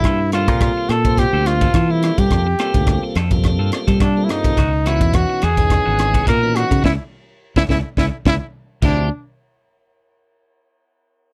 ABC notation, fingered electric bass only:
X:1
M:4/4
L:1/16
Q:"Swing 16ths" 1/4=106
K:Gdor
V:1 name="Fingered electric bass" clef=bass
G,,3 B,,2 z B,,3 D,,3 E,3 G, | F,,2 z D,,2 z F,,3 G,, z G,3 G,, z | ^C,,3 E,,2 z E,,3 ^G,,,3 B,,3 ^C, | ^C,, z4 C,, C,, z C,, z C,, z3 D,,2 |
z16 |]